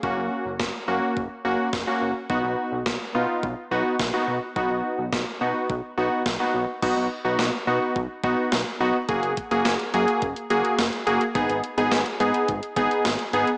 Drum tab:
CC |----------------|----------------|----------------|x---------------|
HH |----------------|----------------|----------------|----------------|
SD |----o-------o---|----o-------o---|----o-------o---|----o-------o---|
BD |o---o---o---o---|o---o---o---o---|o---o---o---o---|o-------o-o-----|

CC |----------------|----------------|
HH |xxxxxxxxxxxxxxxx|xxxxxxxxxxxxxxxx|
SD |----o-------o---|----o-------o---|
BD |o-o-----o-------|o-------o-o-----|